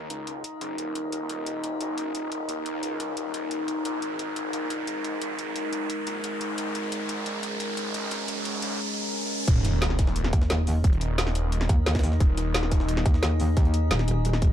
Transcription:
Already playing: D#4 A#4 D#5, riser
0.10 C#2, closed hi-hat
0.27 closed hi-hat
0.44 closed hi-hat
0.61 F#1, closed hi-hat
0.78 D#1, closed hi-hat
0.95 closed hi-hat
1.12 D#1, closed hi-hat
1.29 D#1, closed hi-hat
1.46 closed hi-hat
1.64 closed hi-hat
1.81 F#1, closed hi-hat
1.98 closed hi-hat
2.15 D#1, closed hi-hat
2.32 closed hi-hat
2.49 D#2, closed hi-hat
2.66 closed hi-hat
2.83 C#2, closed hi-hat
3.00 closed hi-hat
3.17 D#1, closed hi-hat
3.34 D#1, closed hi-hat
3.51 closed hi-hat
3.68 closed hi-hat
3.85 A#1, closed hi-hat
4.02 G#1 G#3, closed hi-hat
4.19 closed hi-hat
4.36 closed hi-hat
4.53 A#1, closed hi-hat
4.70 closed hi-hat
4.87 G#1, closed hi-hat
5.04 closed hi-hat
5.22 G#1, closed hi-hat
5.39 closed hi-hat
5.56 F#1, closed hi-hat
5.73 closed hi-hat
5.90 closed hi-hat
6.07 A#1, closed hi-hat
6.24 G#1, closed hi-hat
6.41 closed hi-hat
6.58 G#1, closed hi-hat
6.75 G#1 C#4, closed hi-hat
6.92 closed hi-hat
7.09 closed hi-hat
7.26 A#1, closed hi-hat
7.43 closed hi-hat
7.60 G#1, closed hi-hat
7.77 closed hi-hat
7.94 G#1, closed hi-hat
8.11 closed hi-hat
8.28 F#1, closed hi-hat
8.45 closed hi-hat
8.62 A#1, closed hi-hat
9.48 D#1 D#4 A#4 D#5, kick, closed hi-hat, crash, sub drop
9.65 snare, closed hi-hat
9.82 snare, closed hi-hat
9.90 snare
9.99 kick, snare, closed hi-hat
10.07 snare
10.16 closed hi-hat
10.24 snare
10.33 D#2, kick, closed hi-hat
10.42 snare
10.50 snare, closed hi-hat
10.67 open hi-hat
10.84 D#1, kick, closed hi-hat
10.93 closed hi-hat
11.01 closed hi-hat
11.18 snare, closed hi-hat
11.27 snare
11.35 closed hi-hat
11.52 closed hi-hat
11.61 snare
11.69 D#2, kick, closed hi-hat
11.86 snare, closed hi-hat
11.95 kick, snare, closed hi-hat
11.99 snare, closed hi-hat
12.03 snare, closed hi-hat, open hi-hat
12.12 snare
12.20 D#1 G#4, kick, closed hi-hat
12.37 snare, closed hi-hat
12.54 snare, closed hi-hat
12.63 snare
12.71 kick, snare, closed hi-hat
12.80 snare
12.89 closed hi-hat
12.97 snare
13.06 D#2, kick, closed hi-hat
13.14 snare
13.23 snare, closed hi-hat
13.40 open hi-hat
13.57 D#2, kick, closed hi-hat
13.65 closed hi-hat
13.74 closed hi-hat
13.91 D#1, snare, closed hi-hat
13.99 snare
14.08 closed hi-hat
14.25 closed hi-hat
14.33 snare
14.42 kick, closed hi-hat

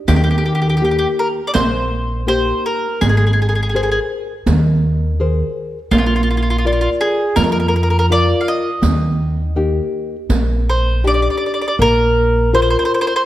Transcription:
0.08 D#2 D#3 G4, riq
0.16 G4
0.24 G4
0.31 G4
0.38 G4
0.46 G4
0.55 G4
0.62 G4
0.70 G4
0.77 G4
0.82 A#3 D#4 G4
0.91 G4
0.99 G4
1.19 A#4
1.47 D5
1.54 A#1 A#3 C5, riq
2.27 A#3 D#4 G4 C5
2.66 A#4
3.01 G#1 G#3 G#4, riq
3.09 G#4
3.17 G#4
3.27 G#4
3.33 G#4
3.42 G#4
3.49 G#4
3.55 G#4
3.63 G#4
3.69 G#4
3.75 G#4 A#4 C5
3.83 G#4
3.92 G#4
4.46 D#2 D#3, riq
5.20 G#4 A#4 C5
5.91 A#1 A#3 F4, riq
5.98 F4
6.06 F4
6.16 F4
6.23 F4
6.30 F4
6.37 F4
6.43 F4
6.50 F4
6.58 F4
6.65 F4 A#4 D5
6.73 F4
6.81 F4
7.01 G#4
7.36 F2 F3 A#4, riq
7.44 A#4
7.52 A#4
7.60 A#4
7.68 A#4
7.76 A#4
7.83 A#4
7.90 A#4
7.99 A#4
8.10 F4 A#4 D5 F5
8.41 F5
8.48 D#5
8.82 D#2 D#3, riq
9.56 A#3 D#4 G4
10.29 A#1 A#3, riq
10.70 C5
11.04 D4 D#4 G4 D5, riq
11.14 D5
11.22 D5
11.30 D5
11.37 D5
11.46 D5
11.54 D5
11.62 D5
11.68 D5
11.79 A#1 A#3 A#4
12.53 F4 A#4 C5
12.62 C5
12.70 C5
12.79 C5
12.85 C5
12.94 C5
13.01 C5
13.07 C5
13.16 C5

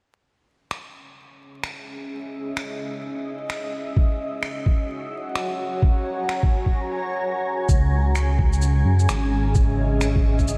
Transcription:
0.25 C#4
0.57 E5
0.71 finger snap
0.78 G#4
1.33 D#5
1.64 finger snap
2.57 finger snap
3.50 finger snap
3.96 F#4, kick
4.07 C#5
4.43 finger snap
4.59 G#5
4.66 kick
5.03 A#5
5.36 finger snap
5.82 kick
6.29 finger snap
6.43 kick
6.66 kick
7.69 C#2 C#4, kick, shaker
8.07 G#4
8.15 finger snap, shaker
8.39 kick
8.53 shaker
8.62 D#5, shaker
8.85 F#2
8.99 E5, shaker
9.09 G#1, finger snap, shaker
9.55 kick, shaker
10.01 finger snap, shaker
10.16 kick
10.39 kick, shaker
10.48 shaker

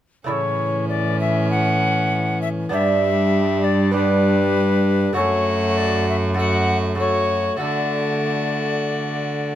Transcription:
0.24 A2 C#3 E3 A3 C#4 E4 D5
0.31 C#5
0.89 D5
1.20 E5
1.51 F#5
2.42 E5
2.69 G2 G3 B3 D4 G4 E5
2.74 D4
3.64 D5
3.91 G3 B3 D4 G4 B4
5.13 F#2 A3 F#4 A4 C#5
5.17 A3
5.77 D5
6.10 E5
6.34 A3 F#4 A4
6.38 A3 F#5
6.95 A3 F#4 A4
6.99 A3 C#5
7.57 A3 F#4 A4
7.61 D3 D5

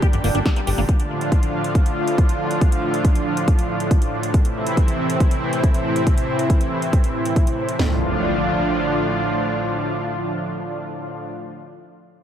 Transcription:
Already playing: A#2 D3 G3 D4 G4
0.02 G4, kick, closed hi-hat
0.13 G1 D3, closed hi-hat
0.24 G1 A#3, open hi-hat
0.35 G1 D4, closed hi-hat
0.46 D4, kick, snare, closed hi-hat
0.56 A#3, closed hi-hat
0.67 G1 G4, open hi-hat
0.78 G1 A#3, open hi-hat
0.89 A2 D3 F3 F4, kick, closed hi-hat
1.00 closed hi-hat
1.21 closed hi-hat
1.32 kick, closed hi-hat
1.43 closed hi-hat
1.64 closed hi-hat
1.75 kick, closed hi-hat
1.86 closed hi-hat
2.07 closed hi-hat
2.18 kick, closed hi-hat
2.29 closed hi-hat
2.51 closed hi-hat
2.61 kick, closed hi-hat
2.72 closed hi-hat
2.94 closed hi-hat
3.05 kick, closed hi-hat
3.15 closed hi-hat
3.37 closed hi-hat
3.48 kick, closed hi-hat
3.59 closed hi-hat
3.80 closed hi-hat
3.91 kick, closed hi-hat
4.02 closed hi-hat
4.23 closed hi-hat
4.34 C3 E3 C4 E4, kick, closed hi-hat
4.45 closed hi-hat
4.67 closed hi-hat
4.77 kick, closed hi-hat
4.88 closed hi-hat
5.10 closed hi-hat
5.20 kick, closed hi-hat
5.31 closed hi-hat
5.53 closed hi-hat
5.64 kick, closed hi-hat
5.74 closed hi-hat
5.96 closed hi-hat
6.07 kick, closed hi-hat
6.18 closed hi-hat
6.39 closed hi-hat
6.50 kick, closed hi-hat
6.61 closed hi-hat
6.82 closed hi-hat
6.93 kick, closed hi-hat
7.04 closed hi-hat
7.25 closed hi-hat
7.36 kick, closed hi-hat
7.47 closed hi-hat
7.69 closed hi-hat
7.79 A2 D3 F3 D4 F4, snare, floor tom, impact

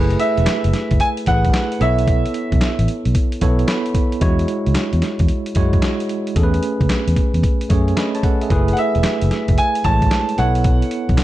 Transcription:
Already playing: F#1 A3 E4 G#4 B4
0.10 closed hi-hat
0.20 E5, closed hi-hat
0.37 E1, closed hi-hat
0.46 snare, clap, closed hi-hat
0.64 F#1, closed hi-hat
0.73 snare, closed hi-hat
0.91 F#1, kick, closed hi-hat
1.00 G#5, closed hi-hat
1.17 closed hi-hat
1.26 A1 A3 E4 G#4 B4 F#5, kick, closed hi-hat
1.45 kick, closed hi-hat
1.54 snare, clap, closed hi-hat
1.72 closed hi-hat
1.80 B1 B3 E4 A4 C#5 E5, closed hi-hat
1.99 closed hi-hat
2.08 kick, closed hi-hat
2.26 closed hi-hat
2.34 closed hi-hat
2.52 B1, kick, closed hi-hat
2.61 snare, clap, closed hi-hat
2.79 A1, closed hi-hat
2.88 closed hi-hat
3.05 B1, closed hi-hat
3.15 kick, closed hi-hat
3.32 closed hi-hat
3.41 B1 B3 E4 A4 C#5, kick, closed hi-hat
3.59 closed hi-hat
3.68 B5, snare, clap, closed hi-hat
3.86 closed hi-hat
3.95 kick, closed hi-hat
4.12 closed hi-hat
4.21 E2 G#3 E4 F#4 C#5, kick, closed hi-hat
4.39 closed hi-hat
4.48 closed hi-hat
4.66 C#2, closed hi-hat
4.75 snare, clap, closed hi-hat
4.93 E2, closed hi-hat
5.02 snare, closed hi-hat
5.19 E2, kick, closed hi-hat
5.28 closed hi-hat
5.46 closed hi-hat
5.55 F#2 G#3 E4 F#4 C#5, kick, closed hi-hat
5.73 kick, closed hi-hat
5.82 snare, clap, closed hi-hat
6.00 closed hi-hat
6.09 closed hi-hat
6.27 closed hi-hat
6.36 E2 A3 C#4 G#4 A4, kick, closed hi-hat
6.43 B4
6.54 closed hi-hat
6.63 closed hi-hat
6.81 C#2, kick, closed hi-hat
6.90 snare, clap, closed hi-hat
7.08 E2, closed hi-hat
7.16 kick, closed hi-hat
7.34 E2, closed hi-hat
7.43 kick, closed hi-hat
7.61 closed hi-hat
7.70 F#2 A3 C#4 G#4 C#5, kick, closed hi-hat
7.88 closed hi-hat
7.97 D#5 B5, snare, clap, closed hi-hat
8.15 C#5 A5, closed hi-hat
8.23 A4 F#5, kick, closed hi-hat
8.41 G#4 E5, closed hi-hat
8.50 F#1 A3 E4 G#4 B4, kick, closed hi-hat
8.68 closed hi-hat
8.73 F#5, closed hi-hat
8.78 E5
8.95 E1, closed hi-hat
9.03 snare, clap, closed hi-hat
9.21 F#1, closed hi-hat
9.31 snare, closed hi-hat
9.48 F#1, kick, closed hi-hat
9.58 G#5, closed hi-hat
9.75 closed hi-hat
9.84 A1 G#3 E4 C#5 A5, kick, closed hi-hat
9.91 A3
10.02 kick, closed hi-hat
10.11 snare, clap, closed hi-hat
10.29 closed hi-hat
10.38 B1 B3 E4 A4 C#5 F#5, closed hi-hat
10.55 closed hi-hat
10.64 kick, closed hi-hat
10.82 closed hi-hat
10.91 closed hi-hat
11.09 B1, kick, closed hi-hat
11.18 snare, clap, closed hi-hat

